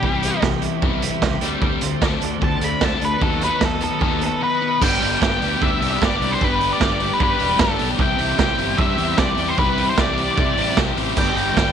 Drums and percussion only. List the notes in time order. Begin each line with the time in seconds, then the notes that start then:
0.03 kick
0.23 closed hi-hat
0.42 kick, snare
0.62 closed hi-hat
0.82 kick
1.02 closed hi-hat
1.22 kick, snare
1.41 closed hi-hat
1.62 kick
1.81 closed hi-hat
2.02 kick, snare
2.22 closed hi-hat
2.42 kick
2.61 closed hi-hat
2.81 kick, snare
3.01 closed hi-hat
3.22 kick
3.41 closed hi-hat
3.61 kick, snare
3.81 closed hi-hat
4.01 kick
4.21 closed hi-hat
4.82 kick, crash
5.02 open hi-hat
5.22 kick, snare
5.42 open hi-hat
5.62 kick
5.82 open hi-hat
6.02 kick, snare
6.22 open hi-hat
6.41 kick
6.61 open hi-hat
6.81 kick, snare
7.00 open hi-hat
7.20 kick
7.39 open hi-hat
7.59 kick, snare
7.79 open hi-hat
7.99 kick
8.19 open hi-hat
8.39 kick, snare
8.59 open hi-hat
8.78 kick
8.98 open hi-hat
9.18 kick, snare
9.37 open hi-hat
9.58 kick
9.78 open hi-hat
9.98 kick, snare
10.17 open hi-hat
10.38 kick
10.58 open hi-hat
10.77 kick, snare
10.97 open hi-hat
11.16 kick, crash
11.37 open hi-hat
11.57 kick, snare